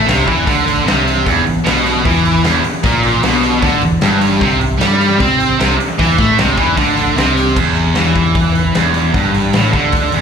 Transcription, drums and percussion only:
0.08 snare loud
0.08 open hi-hat medium
0.28 kick medium
0.28 open hi-hat medium
0.47 kick loud
0.47 open hi-hat medium
0.68 open hi-hat medium
0.88 snare loud
0.88 open hi-hat medium
1.07 open hi-hat medium
1.26 kick loud
1.26 open hi-hat medium
1.47 open hi-hat medium
1.66 snare loud
1.66 open hi-hat medium
1.86 open hi-hat medium
2.05 kick loud
2.05 open hi-hat medium
2.25 open hi-hat medium
2.44 snare medium
2.44 open hi-hat medium
2.64 open hi-hat medium
2.83 kick loud
2.83 open hi-hat medium
3.03 open hi-hat medium
3.23 snare loud
3.23 open hi-hat medium
3.43 open hi-hat medium
3.62 kick loud
3.62 open hi-hat medium
3.81 open hi-hat medium
4.01 snare loud
4.01 open hi-hat medium
4.21 open hi-hat medium
4.41 kick loud
4.41 open hi-hat medium
4.61 open hi-hat medium
4.81 snare loud
4.81 open hi-hat medium
5.01 open hi-hat medium
5.20 kick loud
5.20 open hi-hat medium
5.40 open hi-hat medium
5.60 snare loud
5.60 open hi-hat medium
5.80 open hi-hat medium
5.99 kick loud
5.99 open hi-hat medium
6.18 kick loud
6.18 open hi-hat medium
6.38 snare loud
6.38 open hi-hat medium
6.57 kick medium
6.57 open hi-hat medium
6.77 kick loud
6.77 open hi-hat medium
6.97 open hi-hat medium
7.18 snare medium
7.18 open hi-hat medium
7.37 open hi-hat medium
7.56 kick loud
7.56 crash loud
7.76 open hi-hat soft
7.95 snare loud
7.95 open hi-hat medium
8.15 kick medium
8.15 open hi-hat soft
8.35 kick loud
8.35 open hi-hat medium
8.55 open hi-hat medium
8.75 snare loud
8.75 open hi-hat medium
8.94 open hi-hat medium
9.14 kick loud
9.14 open hi-hat medium
9.34 open hi-hat medium
9.53 snare loud
9.53 open hi-hat medium
9.73 kick medium
9.73 open hi-hat medium
9.92 kick loud
9.92 open hi-hat medium
10.12 open hi-hat medium

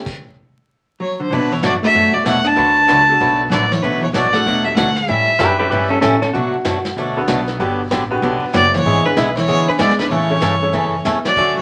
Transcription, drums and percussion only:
0.06 kick medium
0.06 crash medium
1.32 brush sweep soft
1.63 snare medium
1.63 hi-hat pedal medium
1.95 brush sweep medium
2.26 snare medium
2.26 hi-hat pedal medium
2.57 brush sweep soft
2.89 snare medium
2.89 hi-hat pedal medium
3.20 brush sweep soft
3.52 snare medium
3.52 hi-hat pedal medium
3.72 snare soft
3.83 brush sweep soft
4.14 snare medium
4.14 hi-hat pedal medium
4.34 snare soft
4.45 brush sweep soft
4.77 snare medium
4.77 hi-hat pedal medium
4.96 snare soft
5.08 brush sweep soft
5.39 snare medium
5.39 hi-hat pedal medium
5.71 brush sweep soft
6.02 snare medium
6.02 hi-hat pedal medium
6.22 snare soft
6.33 brush sweep soft
6.65 snare medium
6.65 hi-hat pedal medium
6.85 snare soft
6.96 brush sweep medium
7.28 snare medium
7.28 hi-hat pedal medium
7.48 snare soft
7.59 brush sweep soft
7.91 snare medium
7.91 hi-hat pedal medium
8.22 brush sweep soft
8.54 snare medium
8.54 hi-hat pedal medium
8.74 snare soft
8.85 brush sweep soft
9.17 snare medium
9.17 hi-hat pedal medium
9.37 snare soft
9.48 brush sweep medium
9.79 snare medium
9.79 hi-hat pedal medium
9.90 snare soft
9.99 snare soft
10.11 brush sweep medium
10.42 snare medium
10.42 hi-hat pedal medium
10.73 brush sweep medium
11.05 snare medium
11.05 hi-hat pedal medium
11.25 snare medium
11.36 brush sweep soft
11.36 kick medium
11.36 crash medium

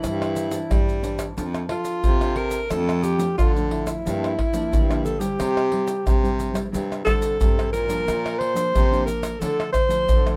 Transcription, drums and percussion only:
0.04 pandeiro medium
0.04 tamborim medium
0.04 shaker medium
0.04 surdo medium
0.22 pandeiro soft
0.22 tamborim medium
0.22 shaker soft
0.36 pandeiro medium
0.36 shaker medium
0.51 pandeiro medium
0.51 shaker medium
0.71 pandeiro medium
0.71 tamborim medium
0.71 shaker medium
0.71 surdo medium
0.89 pandeiro soft
0.89 shaker soft
1.04 pandeiro medium
1.04 shaker medium
1.19 pandeiro medium
1.19 tamborim medium
1.19 shaker medium
1.38 pandeiro medium
1.38 shaker medium
1.38 surdo medium
1.55 pandeiro soft
1.55 tamborim medium
1.55 shaker soft
1.69 pandeiro medium
1.69 tamborim medium
1.85 pandeiro medium
1.85 shaker medium
2.04 pandeiro medium
2.04 shaker medium
2.04 surdo medium
2.21 pandeiro soft
2.21 tamborim medium
2.21 shaker soft
2.36 pandeiro medium
2.51 pandeiro medium
2.51 shaker medium
2.70 pandeiro medium
2.70 tamborim medium
2.70 shaker medium
2.70 surdo medium
2.89 pandeiro soft
2.89 tamborim medium
2.89 shaker soft
3.04 pandeiro medium
3.04 shaker medium
3.20 pandeiro medium
3.20 shaker medium
3.39 pandeiro medium
3.39 tamborim medium
3.39 shaker medium
3.39 surdo medium
3.57 pandeiro soft
3.57 shaker soft
3.71 pandeiro medium
3.87 pandeiro medium
3.87 tamborim medium
3.87 shaker medium
4.07 pandeiro medium
4.07 shaker medium
4.07 surdo medium
4.24 pandeiro soft
4.24 tamborim medium
4.24 shaker soft
4.39 pandeiro medium
4.39 tamborim medium
4.39 surdo medium
4.54 pandeiro medium
4.54 shaker medium
4.73 pandeiro medium
4.73 shaker medium
4.73 surdo medium
4.91 pandeiro soft
4.91 tamborim medium
4.91 shaker soft
5.06 pandeiro soft
5.06 shaker medium
5.21 pandeiro medium
5.21 shaker medium
5.40 pandeiro medium
5.40 tamborim medium
5.40 shaker medium
5.40 surdo medium
5.57 pandeiro soft
5.57 tamborim medium
5.57 shaker soft
5.72 pandeiro medium
5.88 pandeiro medium
5.88 shaker medium
6.07 pandeiro medium
6.07 tamborim medium
6.07 shaker medium
6.07 surdo medium
6.25 pandeiro soft
6.25 shaker soft
6.40 pandeiro medium
6.40 shaker medium
6.55 pandeiro medium
6.55 tamborim medium
6.55 shaker medium
6.74 pandeiro medium
6.74 shaker medium
6.74 surdo medium
6.92 pandeiro soft
6.92 tamborim medium
6.92 shaker soft
7.07 pandeiro medium
7.07 tamborim medium
7.07 shaker medium
7.07 surdo medium
7.22 pandeiro medium
7.22 shaker medium
7.41 pandeiro medium
7.41 shaker medium
7.41 surdo medium
7.59 pandeiro soft
7.59 tamborim medium
7.59 shaker soft
7.74 pandeiro soft
7.74 shaker medium
7.90 pandeiro medium
7.90 shaker medium
8.08 pandeiro medium
8.08 tamborim medium
8.08 shaker medium
8.08 surdo medium
8.26 pandeiro soft
8.26 tamborim medium
8.26 shaker soft
8.41 pandeiro medium
8.56 pandeiro medium
8.56 shaker medium
8.75 pandeiro medium
8.75 tamborim medium
8.75 shaker medium
8.75 surdo medium
8.93 pandeiro soft
8.93 shaker soft
9.08 pandeiro medium
9.08 shaker medium
9.23 pandeiro medium
9.23 tamborim medium
9.23 shaker medium
9.42 pandeiro medium
9.42 shaker medium
9.42 surdo soft
9.60 pandeiro soft
9.60 tamborim medium
9.60 shaker soft
9.74 pandeiro medium
9.74 tamborim medium
9.74 shaker medium
9.74 surdo medium
9.90 pandeiro medium
9.90 shaker medium
10.09 pandeiro medium
10.09 shaker medium
10.09 surdo medium
10.27 pandeiro soft
10.27 tamborim medium
10.27 shaker soft

